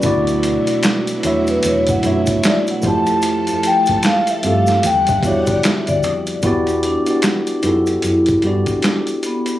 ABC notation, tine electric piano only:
X:1
M:4/4
L:1/16
Q:"Swing 16ths" 1/4=75
K:D
V:1 name="Tine electric piano"
[A,DEFd]4- [A,DEFd] z [A,DEFe]3 z [A,DE=F^Fc]4 [A,E=FG=c]2- | [A,E=FG=c]4- [A,EFGc] z [A,=CFGA]2 z2 [B,E^FGd]4- [B,EFGd] z | [B,EFGd]3 [B,EFGd]3 [B,EFGA]3 z [B,EFGd]6 |]